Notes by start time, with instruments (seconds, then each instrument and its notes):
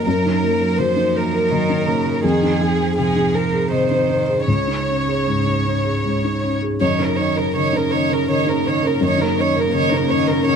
Already playing: felt piano A#4
0.06 felt piano F#2, cello F#3, violin section A#4
0.26 felt piano D#4
0.43 felt piano A#3
0.61 felt piano A#4
0.78 cello F3, felt piano F#3, violin section C5
0.96 felt piano D#4
1.15 felt piano A#3, violin section A#4
1.34 felt piano A#4
1.51 cello D#3, felt piano F#3
1.70 felt piano D#4
1.87 cello C#3, felt piano A#3
2.06 felt piano A#4
2.24 felt piano F2, cello D#3, violin section G#4
2.43 felt piano D#4
2.61 cello F3, felt piano C4
2.80 felt piano G#4
2.97 felt piano C3, cello F3, violin section G#4
3.16 felt piano D#4
3.34 felt piano C4, violin section A#4
3.53 felt piano G#4
3.71 felt piano C3, cello D#3, violin section C5
3.91 felt piano D#4
4.09 felt piano C4
4.28 felt piano G#4
4.47 felt piano C#2, cello C#3, violin section C#5
4.68 felt piano D#4
4.88 felt piano C#4
5.07 felt piano G#4
5.27 felt piano G#2
5.46 felt piano D#4
5.65 felt piano C#4
5.85 felt piano G#4
6.05 felt piano G#2
6.25 felt piano D#4
6.43 felt piano C#4
6.62 felt piano G#4
6.80 felt piano F#2, cello D#3, ambient pad A#3 D#4 C#5, violin section C#5
7.00 cello C#3, felt piano D#4, violin section A#4
7.18 cello D#3, felt piano C#4, violin section C#5
7.36 cello C#3, felt piano A#4, violin section A#4
7.54 felt piano C#3, cello D#3, violin section C#5
7.73 cello C#3, felt piano D#4, violin section A#4
7.92 cello D#3, felt piano C#4, violin section C#5
8.10 cello C#3, felt piano A#4, violin section A#4
8.27 felt piano C#3, cello D#3, violin section C#5
8.47 cello C#3, felt piano D#4, violin section A#4
8.65 cello D#3, felt piano C#4, violin section C#5
8.82 cello C#3, felt piano A#4, violin section A#4
9.01 felt piano F#2, cello D#3
9.05 violin section C#5
9.18 cello C#3, felt piano D#4, violin section A#4
9.36 cello D#3, felt piano C#4
9.40 violin section C#5
9.55 cello C#3, felt piano A#4, violin section A#4
9.73 felt piano C#3, cello D#3, violin section C#5
9.92 cello C#3, felt piano D#4, violin section A#4
10.10 cello D#3, felt piano C#4, violin section C#5
10.27 violin section A#4, felt piano A#4
10.32 cello C#3
10.46 felt piano C#3, cello D#3, violin section C#5